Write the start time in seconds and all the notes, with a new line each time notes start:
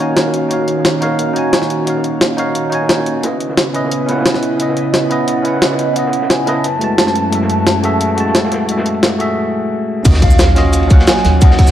Already playing: D#3 A#3 C#4 D#4 F#4 F5
0.00 F#4 C#5 G#5
0.09 snare
0.17 snare, closed hi-hat, ride
0.25 snare
0.34 snare, closed hi-hat, ride
0.48 D#4 F#4 C#5, closed hi-hat
0.53 F5
0.60 snare
0.68 closed hi-hat, open hi-hat
0.77 snare
0.85 snare, closed hi-hat
1.01 D#4 F#4 C#5 F5, snare, closed hi-hat
1.19 snare, closed hi-hat, ride
1.33 D#4 F#4 C#5, closed hi-hat
1.38 G#5
1.53 snare, closed hi-hat
1.62 snare
1.70 closed hi-hat, ride
1.78 ride
1.85 D#4 F#4 C#5, closed hi-hat, ride
1.90 F5
1.95 snare
2.04 closed hi-hat, ride
2.21 snare, closed hi-hat, ride
2.37 D#4 F#4 C#5 F5, snare, closed hi-hat, ride
2.55 closed hi-hat, ride
2.64 ride
2.70 D#4 F#4 C#5, closed hi-hat, ride
2.75 G#5
2.81 snare
2.89 snare, closed hi-hat, ride
2.98 snare
3.06 closed hi-hat, ride
3.21 C#3 B3 C#4 E4 B4 D#5, snare, closed hi-hat, ride
3.26 D#5
3.40 closed hi-hat, open hi-hat
3.48 snare
3.57 snare, closed hi-hat, ride
3.73 C#4 E4 B4 D#5, closed hi-hat, ride
3.84 snare
3.92 closed hi-hat
4.06 C#4 E4 B4, snare, closed hi-hat, ride
4.11 F#5, snare, ride
4.17 snare, ride
4.21 snare, ride
4.26 snare, closed hi-hat, ride
4.34 snare
4.42 closed hi-hat, ride
4.52 ride
4.57 C#4 E4 B4 D#5, closed hi-hat, ride
4.62 D#5
4.69 snare
4.76 closed hi-hat, ride
4.93 snare, closed hi-hat, ride
5.10 C#4 E4 B4 D#5 F#5, closed hi-hat, ride
5.28 closed hi-hat, ride
5.37 ride
5.42 C#4 E4 B4 E5, closed hi-hat, ride
5.48 F#5
5.54 snare
5.62 D#5, snare, closed hi-hat, ride
5.71 snare
5.79 snare, closed hi-hat, ride
5.94 C#4 E4 B4 F#5, closed hi-hat, ride
5.99 D#5
6.06 snare
6.13 closed hi-hat, open hi-hat
6.21 snare
6.29 G#5, snare, closed hi-hat, ride
6.46 C#4 E4 B4 D#5 A5, snare, closed hi-hat, ride
6.64 F#2 F#3 C#4, snare, closed hi-hat, ride
6.79 G#3 A3 F#4, closed hi-hat, ride
6.84 A5
6.98 snare, closed hi-hat, ride
7.07 snare
7.15 closed hi-hat, ride
7.24 ride
7.30 G#3 A3 F#4, closed hi-hat, ride
7.35 E5
7.41 snare
7.50 closed hi-hat, ride
7.67 snare, closed hi-hat, ride
7.82 A3 F#4 G#4 E5, snare, closed hi-hat, ride
8.01 closed hi-hat, ride
8.10 ride
8.15 G#3 A3 F#4, closed hi-hat, ride
8.20 A5
8.27 snare
8.35 snare, closed hi-hat, ride
8.44 snare
8.51 snare, closed hi-hat, ride
8.66 G#3 A3 F#4, closed hi-hat, ride
8.71 E5
8.77 snare, ride
8.86 closed hi-hat
8.94 ride
9.03 snare, closed hi-hat, ride
9.19 A3 F#4 G#4 E5, closed hi-hat, ride
10.03 D#2 F#3 A#3 C#4 F4 F#4, kick, closed hi-hat, ride, crash, impact, cabasa
10.08 D#5
10.14 snare
10.22 F5, kick, cross-stick, closed hi-hat, ride
10.31 cabasa
10.39 snare, closed hi-hat, ride, cabasa
10.55 C#4 F4 F#4 D#5, snare, closed hi-hat, ride
10.73 F5, closed hi-hat, ride, cabasa
10.83 ride
10.88 C#4 F#4 F5, kick, closed hi-hat, ride, cabasa
10.93 F#5
10.99 snare
11.07 G#5, snare, closed hi-hat, ride, cabasa
11.17 snare
11.25 D#2, snare, open hi-hat, ride
11.39 C#4 D#4 F#4 F#5, kick, closed hi-hat, ride, cabasa
11.44 D#5
11.51 snare
11.58 kick, cross-stick, closed hi-hat, open hi-hat
11.67 D#2, snare, cabasa